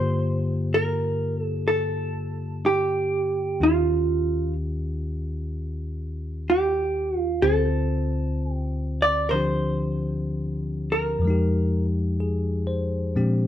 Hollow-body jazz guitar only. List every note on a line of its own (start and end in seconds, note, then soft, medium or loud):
0.00 0.77 C5 medium
0.74 1.40 A#4 medium
1.40 1.67 A4 medium
1.68 2.66 A4 medium
2.66 3.64 G4 medium
3.63 4.53 F4 medium
6.50 7.18 G4 medium
7.18 7.42 F4 medium
7.42 8.53 A4 medium
8.53 9.07 G4 medium
9.02 9.29 D5 medium
9.29 9.33 A#4 medium
9.29 10.89 C5 medium
10.92 11.84 A#4 medium